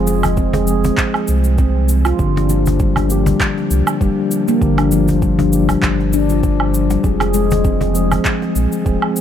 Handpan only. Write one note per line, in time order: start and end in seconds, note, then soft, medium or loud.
0.07 0.36 G#3 loud
0.37 0.52 C4 medium
0.54 0.83 G#4 medium
0.84 0.97 C4 medium
1.59 2.04 C4 medium
2.05 2.18 F4 medium
2.20 2.29 D3 medium
2.36 2.49 D4 medium
2.50 2.79 F3 medium
2.80 2.95 G3 medium
2.97 3.25 D4 medium
3.27 3.40 G3 medium
4.02 4.46 G3 medium
4.48 4.60 A#3 medium
4.62 4.71 D3 medium
4.79 4.91 D4 medium
4.92 5.21 F3 loud
5.23 5.37 G3 medium
5.39 5.68 D4 medium
5.69 5.82 G3 medium
6.14 6.29 D4 loud
6.30 6.42 F3 loud
6.44 6.59 F3 medium
6.91 7.03 G3 medium
7.04 7.14 F3 medium
7.21 7.34 G#4 medium
7.34 7.63 G#3 medium
7.65 7.80 C4 medium
7.81 8.10 G#4 medium
8.12 8.25 C4 medium
8.86 9.21 C4 medium